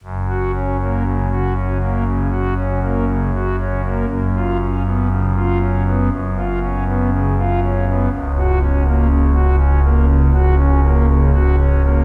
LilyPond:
<<
  \new Staff \with { instrumentName = "Pipe organ" } { \time 4/4 \key fis \major \tempo 4 = 60 fis,16 fis'16 cis'16 ais16 cis16 fis'16 cis'16 ais16 cis16 fis'16 cis'16 ais16 cis16 fis'16 cis'16 ais16 | fis,16 eis'16 cis'16 b16 cis16 eis'16 cis'16 b16 fis,16 eis'16 cis'16 b16 cis16 eis'16 cis'16 b16 | cis,16 fis'16 cis'16 ais16 cis16 fis'16 cis'16 ais16 cis16 fis'16 cis'16 ais16 cis16 fis'16 cis'16 ais16 | }
  \new Staff \with { instrumentName = "Pipe organ" } { \clef bass \time 4/4 \key fis \major fis,,1 | fis,,2 fis,,2 | cis,,1 | }
>>